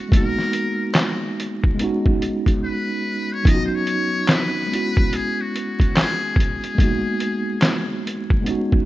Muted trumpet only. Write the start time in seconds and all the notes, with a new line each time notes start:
Already playing: F#4
0.16 A#4
2.64 B4
3.33 C#5
3.48 D#5
3.66 C5
3.75 C#5
4.32 B4
5.15 G#4
5.41 F#4
5.98 G#4
6.39 G#4